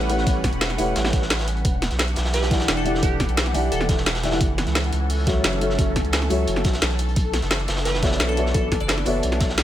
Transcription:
Already playing: sub bass A1, analog synth pad G3 C#4 B4 F#5
0.01 closed hi-hat
0.09 grand piano A3 E4 G4 B4 C#5 F#5, closed hi-hat
0.18 snare
0.26 sub bass A1, grand piano A3 E4 G4 B4 C#5 F#5, kick, closed hi-hat
0.44 kick, snare, closed hi-hat
0.53 sub bass E1, closed hi-hat
0.61 snare, closed hi-hat
0.70 snare, closed hi-hat
0.77 sub bass E1, grand piano A3 E4 G4 B4 C#5 F#5, closed hi-hat, open hi-hat
0.96 sub bass A1, snare, closed hi-hat
1.05 snare, closed hi-hat
1.13 sub bass A1, kick, snare, closed hi-hat
1.22 snare
1.30 snare, closed hi-hat
1.39 snare, closed hi-hat
1.48 closed hi-hat
1.57 closed hi-hat
1.65 sub bass E1, analog synth pad E3 D4 G4 F#5, kick, closed hi-hat
1.82 snare, closed hi-hat
1.91 sub bass B1, snare, closed hi-hat
1.99 snare, closed hi-hat
2.08 closed hi-hat
2.16 sub bass B1, snare, closed hi-hat
2.25 snare, closed hi-hat
2.33 synth pluck B4, snare, closed hi-hat
2.42 snare, closed hi-hat
2.50 grand piano E3 E4 G4 D5 F#5, kick, snare, closed hi-hat
2.60 snare, closed hi-hat
2.68 sub bass E1, snare, closed hi-hat
2.77 synth pluck A4, closed hi-hat
2.85 grand piano E3 E4 G4 D5 F#5, closed hi-hat
2.95 snare
3.02 sub bass E1, grand piano E3 G4 D5 F#5, synth pluck G4, kick, closed hi-hat
3.20 kick, snare, closed hi-hat
3.29 sub bass B1, closed hi-hat
3.37 snare, closed hi-hat
3.46 snare, closed hi-hat
3.53 sub bass B1, grand piano E3 E4 G4 D5 F#5, closed hi-hat, open hi-hat
3.72 sub bass E1, synth pluck A4, closed hi-hat
3.81 snare, closed hi-hat
3.89 sub bass E1, kick, snare, closed hi-hat
3.98 snare
4.06 snare, closed hi-hat
4.15 snare, closed hi-hat
4.23 grand piano E3 E4 G4 D5 E5, snare, closed hi-hat
4.31 grand piano E3 E4 G4 F#5, snare, closed hi-hat
4.41 sub bass F#1, analog synth pad C#4 A4, kick, closed hi-hat
4.58 snare, closed hi-hat
4.67 sub bass C#2, snare, closed hi-hat
4.75 snare, closed hi-hat
4.84 closed hi-hat
4.93 sub bass C#2, closed hi-hat
5.10 closed hi-hat, open hi-hat
5.26 grand piano F#3 F#4 A4 C#5 E5, kick, snare, closed hi-hat
5.44 sub bass F#1, snare, closed hi-hat
5.53 closed hi-hat
5.61 grand piano F#3 F#4 A4 C#5 E5, closed hi-hat
5.70 snare
5.78 sub bass F#1, grand piano F#3 F#4 A4 C#5 E5, kick, closed hi-hat
5.96 kick, snare, closed hi-hat
6.04 sub bass C#2, closed hi-hat
6.13 snare, closed hi-hat
6.22 snare, closed hi-hat
6.29 sub bass C#2, grand piano F#3 F#4 A4 C#5 E5, closed hi-hat, open hi-hat
6.47 sub bass F#1, closed hi-hat
6.56 snare, closed hi-hat
6.64 sub bass B1, kick, snare, closed hi-hat
6.73 snare, closed hi-hat
6.82 sub bass B1, snare, closed hi-hat
6.91 snare, closed hi-hat
6.99 analog synth pad E3 D4, closed hi-hat
7.09 closed hi-hat
7.16 sub bass B1, kick, closed hi-hat
7.33 snare, closed hi-hat
7.42 sub bass F#1, snare, closed hi-hat
7.51 snare, closed hi-hat
7.60 closed hi-hat
7.68 sub bass F#1, snare, closed hi-hat
7.77 snare, closed hi-hat
7.85 synth pluck B4, snare, closed hi-hat
7.94 snare, closed hi-hat
8.02 grand piano B3 F#4 A4 C#5 D5 E5, kick, snare, closed hi-hat
8.12 snare, closed hi-hat
8.20 sub bass B1, snare, closed hi-hat
8.29 synth pluck A4, closed hi-hat
8.37 grand piano B3 F#4 A4 C#5 D5 E5, closed hi-hat
8.46 snare
8.54 sub bass B1, grand piano B3 F#4 A4, synth pluck A4, kick, closed hi-hat
8.72 kick, snare, closed hi-hat
8.80 sub bass F#1, synth pluck D5, closed hi-hat
8.88 snare, closed hi-hat
8.98 snare, closed hi-hat
9.05 sub bass F#1, grand piano B3 F#4 A4 C#5 D5 E5, closed hi-hat, open hi-hat
9.23 sub bass B1, closed hi-hat
9.32 snare, closed hi-hat
9.40 sub bass B1, kick, snare, closed hi-hat
9.49 snare
9.58 snare, closed hi-hat

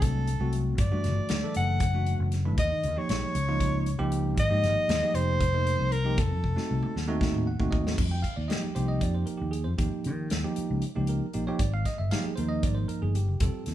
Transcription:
Already playing: fingered electric bass C2, tine electric piano F#3 A3 C4 D4
0.02 soprano saxophone A4, kick, closed hi-hat
0.28 closed hi-hat
0.40 fingered electric bass C2, tine electric piano F#3 A3 C4 F#4
0.53 closed hi-hat
0.78 fingered electric bass G1, soprano saxophone D5, kick, closed hi-hat
0.92 fingered electric bass G2, tine electric piano E3 A3 D4 F#4
1.04 fingered electric bass G1, snare, closed hi-hat
1.29 fingered electric bass D2, snare, closed hi-hat
1.44 tine electric piano E3 A3 D4 A4
1.54 fingered electric bass F#1, soprano saxophone F#5, closed hi-hat
1.80 kick, closed hi-hat
1.94 tine electric piano E3 A3 D4 F#4
2.06 closed hi-hat
2.19 fingered electric bass F#1
2.32 snare, closed hi-hat
2.45 tine electric piano E3 A3 D4 E4
2.58 fingered electric bass D#2, soprano saxophone D#5, kick, closed hi-hat
2.71 fingered electric bass D#3
2.83 fingered electric bass D#2, closed hi-hat
2.96 tine electric piano F3 A#3 D#4 G4, soprano saxophone C#5
3.09 fingered electric bass A#1, soprano saxophone C#5, snare, closed hi-hat
3.35 fingered electric bass C#2, closed hi-hat
3.48 tine electric piano F3 A#3 D#4 F4
3.60 kick, closed hi-hat
3.86 closed hi-hat
3.98 fingered electric bass C#2, tine electric piano F3 A#3 D#4 G4
4.12 closed hi-hat
4.38 fingered electric bass G#1, soprano saxophone D#5, kick, closed hi-hat
4.50 fingered electric bass G#2, tine electric piano F3 A#3 D#4 G4
4.63 fingered electric bass G#1, snare, closed hi-hat
4.89 fingered electric bass D#2, snare, closed hi-hat
5.03 tine electric piano F3 A#3 D#4 G4
5.14 fingered electric bass F1, soprano saxophone C5, closed hi-hat
5.41 kick, closed hi-hat
5.54 tine electric piano F3 A#3 D#4 A#4
5.67 closed hi-hat
5.79 fingered electric bass C2
5.92 soprano saxophone A#4, closed hi-hat
6.05 tine electric piano F3 A#3 D#4 G4
6.18 fingered electric bass F1, soprano saxophone A4, kick, closed hi-hat
6.31 fingered electric bass F2
6.43 fingered electric bass F1, kick
6.56 tine electric piano A3 C4 D#4 F#4, snare
6.71 fingered electric bass C2
6.83 mid tom
6.96 fingered electric bass D#2, snare
7.08 tine electric piano A3 C4 D#4 F#4
7.21 kick, snare
7.34 mid tom
7.47 tine electric piano F#5
7.59 fingered electric bass D#2, tine electric piano A3 C4 D#4 F#4, kick
7.71 tine electric piano D#5, kick
7.87 snare
7.98 fingered electric bass F2, kick, crash
8.11 tine electric piano G5
8.23 tine electric piano F5, kick, closed hi-hat
8.36 fingered electric bass D#2, tine electric piano D5
8.48 tine electric piano F3 A#3 D#4 G4 D#5, snare, closed hi-hat
8.62 tine electric piano G4, muted fingered electric bass stroke
8.75 fingered electric bass C2, tine electric piano F3 A#3 D#4 G4 C5, closed hi-hat
8.88 tine electric piano D#5
9.01 fingered electric bass F2, tine electric piano D5, kick, closed hi-hat
9.15 tine electric piano C5
9.26 tine electric piano A#4, muted fingered electric bass stroke, closed hi-hat
9.37 tine electric piano G4
9.42 fingered electric bass D#2
9.51 tine electric piano G#4, closed hi-hat
9.64 fingered electric bass F2, tine electric piano C5
9.78 fingered electric bass D#2, tine electric piano F3 A#3 D#4 G4, kick, closed hi-hat
9.93 muted fingered electric bass stroke
10.04 fingered electric bass D#3, closed hi-hat
10.30 fingered electric bass D#2, snare, closed hi-hat
10.44 tine electric piano F3 A#3 D#4 G4
10.56 muted fingered electric bass stroke, closed hi-hat
10.70 fingered electric bass C#2
10.82 closed hi-hat
10.96 fingered electric bass C#2, tine electric piano F3 A#3 D#4 G4
11.07 tine electric piano A#4, closed hi-hat
11.33 fingered electric bass A#1, tine electric piano F3 A#3 D#4 G4, closed hi-hat
11.47 tine electric piano F3 A#3 D#4 G4 C#5
11.59 fingered electric bass G#1, tine electric piano D5, kick, closed hi-hat
11.74 tine electric piano F5
11.85 tine electric piano D#5, kick, snare, closed hi-hat
11.98 fingered electric bass G1, tine electric piano E5
12.11 tine electric piano F3 A#3 D#4 G4 F5, snare, closed hi-hat
12.24 tine electric piano G#4, muted fingered electric bass stroke
12.36 fingered electric bass D#2, tine electric piano F3 A#3 D#4 A#4 C5, closed hi-hat
12.48 tine electric piano D#5
12.63 fingered electric bass G#1, tine electric piano D5, kick, closed hi-hat
12.75 tine electric piano C5
12.88 tine electric piano A#4, muted fingered electric bass stroke, closed hi-hat
13.02 fingered electric bass G1, tine electric piano G#4
13.15 tine electric piano G4, closed hi-hat
13.28 fingered electric bass F#1
13.40 fingered electric bass F1, tine electric piano G3 C4 F4 A4, kick, closed hi-hat
13.54 muted fingered electric bass stroke
13.66 fingered electric bass F2, snare, closed hi-hat

